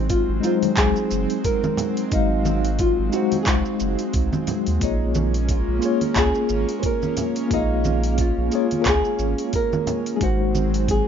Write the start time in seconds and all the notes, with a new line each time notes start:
Already playing: G#1 F#3 G#3 C4 D#4 F#4 C5
0.10 F4, kick, open hi-hat, shaker
0.29 G#1
0.40 F#3 G#3 D#4 F4, open hi-hat, shaker
0.47 C5
0.63 open hi-hat, high conga, shaker
0.77 C2 G#4, kick, clap, open hi-hat, shaker
0.96 shaker
1.11 F#1, shaker
1.30 open hi-hat, shaker
1.44 A#4, kick, open hi-hat, shaker
1.64 high conga, shaker
1.77 open hi-hat, low conga, shaker
1.97 open hi-hat, shaker
2.08 G#1 G#3 D#4 F#4, kick, open hi-hat, shaker
2.13 D#4 F5
2.45 high conga, shaker
2.65 open hi-hat, shaker
2.79 F4, kick, open hi-hat, shaker
2.99 G#1
3.09 G#3 D#4, open hi-hat, shaker
3.14 F#4 C5
3.32 open hi-hat, high conga, shaker
3.43 G#4, clap, open hi-hat, shaker
3.47 C2 F#4, kick
3.65 shaker
3.80 F#1, shaker
3.99 open hi-hat, shaker
4.13 C2, kick, open hi-hat, shaker
4.33 high conga, shaker
4.47 open hi-hat, low conga, shaker
4.67 D#2, open hi-hat, shaker
4.78 A#1 A#3 C#4 F4, kick, open hi-hat, shaker
4.82 D#4 G#4 C#5
5.15 high conga, shaker
5.34 open hi-hat, shaker
5.49 F4, kick, open hi-hat, shaker
5.68 A#1
5.79 A#3 F4, open hi-hat, shaker
5.83 F4 G#4 C#5
6.01 open hi-hat, high conga, shaker
6.16 C#2 G#4, kick, clap, open hi-hat, shaker
6.35 shaker
6.49 G#1, shaker
6.69 open hi-hat, shaker
6.79 C5, open hi-hat, shaker
6.83 A#4, kick
7.02 high conga, shaker
7.17 open hi-hat, low conga, shaker
7.36 open hi-hat, shaker
7.48 A#1 A#3 F4, kick, open hi-hat, shaker
7.52 D#4 G#4 F5
7.84 high conga, shaker
8.04 open hi-hat, shaker
8.18 F4, kick, open hi-hat, shaker
8.38 A#1
8.49 A#3 F4, open hi-hat, shaker
8.53 F4 G#4 C#5
8.71 open hi-hat, high conga, shaker
8.82 A#4, clap, open hi-hat, shaker
8.86 C#2 G#4, kick
9.05 shaker
9.19 G#1, shaker
9.38 open hi-hat, shaker
9.53 A#4, kick, open hi-hat, shaker
9.73 high conga, shaker
9.87 open hi-hat, low conga, shaker
10.06 open hi-hat, shaker
10.16 F#3 G#3 C4 D#4 G#4
10.21 G#1 F#4 C5, kick, open hi-hat, shaker
10.55 high conga, shaker
10.74 open hi-hat, shaker
10.88 G#4, kick, open hi-hat, shaker